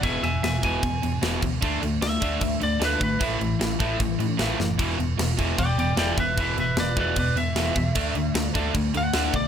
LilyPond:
<<
  \new Staff \with { instrumentName = "Lead electric guitar" } { \time 4/4 \key e \mixolydian \tempo 4 = 152 <e'' gis''>8 <e'' gis''>8 <e'' gis''>8 gis''2~ gis''8~ | gis''8 r8 e''4. d''8 b'8 b'8 | e'2. r4 | r2 <d'' g''>8 <d'' g''>8 <d'' g''>8 <b' e''>8 |
<b' e''>8 <b' e''>8 <b' d''>8 <b' d''>8 <b' d''>8 e''4.~ | e''4. r4 fis''4 d''8 | }
  \new Staff \with { instrumentName = "Distorted electric guitar" } { \clef bass \time 4/4 \key e \mixolydian <e, b, e>8 <e, b,>8 <e, b,>8 <e, b, e>8 <e, b,>8 <e, b,>8 <e, b, e>8 <e, b,>8 | <d a d'>8 <d a>8 <d a>8 <d a d'>8 <d a>8 <d a>8 <d a d'>8 <d a>8 | <a, e a>8 <a, e>8 <a, e>8 <a, e a>8 <a, e>8 <a, e>8 <a, e a>8 <a, e>8 | <e, b, e>8 <e, b,>8 <e, b,>8 <e, b, e>8 <e, b,>8 <e, b,>8 <e, b, e>8 <e, b,>8 |
<e, b, e>8 <e, b,>8 <e, b,>8 <e, b, e>8 <e, b,>8 <e, b,>8 <e, b, e>8 <e, b,>8 | <d a d'>8 <d a>8 <d a>8 <d a d'>8 <d a>8 <d a>8 <d a d'>8 <d a>8 | }
  \new Staff \with { instrumentName = "Overdriven electric guitar" } { \clef bass \time 4/4 \key e \mixolydian <e, b, e>8 <e, b,>8 <e, b,>8 <e, b, e>8 <e, b,>8 <e, b,>8 <e, b, e>8 <e, b,>8 | <d a d'>8 <d a>8 <d a>8 <d a d'>8 <d a>8 <d a>8 <d a d'>8 <d a>8 | <a, e a>8 <a, e>8 <a, e>8 <a, e a>8 <a, e>8 <a, e>8 <a, e a>8 <a, e>8 | <e, b, e>8 <e, b,>8 <e, b,>8 <e, b, e>8 <e, b,>8 <e, b,>8 <e, b, e>8 <e, b,>8 |
<e, b, e>8 <e, b,>8 <e, b,>8 <e, b, e>8 <e, b,>8 <e, b,>8 <e, b, e>8 <e, b,>8 | <d a d'>8 <d a>8 <d a>8 <d a d'>8 <d a>8 <d a>8 <d a d'>8 <d a>8 | }
  \new Staff \with { instrumentName = "Picked electric bass" } { \clef bass \time 4/4 \key e \mixolydian e,,8 e,,8 e,,8 e,,8 e,,8 e,8 e,,8 d,8 | d,8 d,8 d,8 d,8 d,8 d,8 d,8 gis,,8 | a,,8 a,,8 a,,8 a,,8 a,,8 a,8 a,,8 fis,,8 | e,,8 e,,8 e,,8 e,,8 e,,8 e,,8 e,,8 e,,8 |
e,,8 e,,8 e,,8 e,,8 e,,8 e,8 e,,8 e,8 | d,8 d,8 d,8 d,8 d,8 d,8 d,8 b,,8 | }
  \new DrumStaff \with { instrumentName = "Drums" } \drummode { \time 4/4 <cymc bd>8 cymc8 <cymc sn>8 <cymc bd>8 <cymc bd>8 cymc8 <cymc sn>8 <cymc bd>8 | <cymc bd>8 cymc8 <cymc sn>8 <cymc bd>8 <cymc bd>8 cymc8 <cymc sn>8 <cymc bd>8 | <cymc bd>8 cymc8 <cymc sn>8 <cymc bd>8 <cymc bd>8 cymc8 <cymc sn>8 sn8 | <cymc bd>8 cymc8 <cymc sn>8 <cymc bd>8 <cymc bd>8 cymc8 <cymc sn>8 <cymc bd>8 |
<cymc bd>8 cymc8 <cymc sn>8 <cymc bd>8 <cymc bd>8 cymc8 <cymc sn>8 <cymc bd>8 | <cymc bd>8 cymc8 <cymc sn>8 <cymc bd>8 <cymc bd>8 cymc8 <cymc sn>8 <cymc bd>8 | }
>>